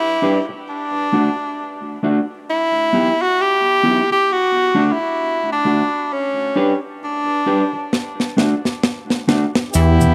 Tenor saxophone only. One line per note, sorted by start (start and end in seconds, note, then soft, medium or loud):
0.00 0.44 E4 loud
0.69 2.00 D4 medium
2.50 3.23 E4 loud
3.22 3.42 F#4 loud
3.41 4.12 G4 loud
4.12 4.33 G4 loud
4.32 4.87 F#4 loud
4.87 4.94 F#4 medium
4.92 5.52 E4 loud
5.53 6.14 D4 medium
6.12 6.79 C#4 medium
7.04 7.90 D4 medium
9.75 10.15 E4 loud